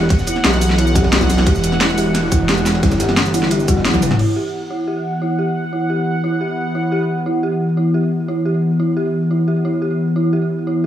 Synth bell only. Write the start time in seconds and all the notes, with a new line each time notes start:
0.27 E4
0.44 G4
0.78 E4
0.95 G4
1.29 E4
1.46 G4
1.81 E4
1.98 G4
2.32 E4
2.49 G4
2.83 E4
3.00 G4
3.34 E4
3.51 G4
3.68 F#4
3.85 E4
4.02 B4
4.19 E4
4.36 G4
4.70 E4
4.88 G4
5.22 E4
5.39 G4
5.73 E4
5.90 G4
6.24 E4
6.41 G4
6.75 E4
6.92 G4
7.26 E4
7.43 G4
7.77 E4
7.94 G4
8.28 E4
8.45 G4
8.80 E4
8.97 G4
9.31 E4
9.48 G4
9.65 E4
9.82 G4
10.16 E4
10.33 G4
10.67 E4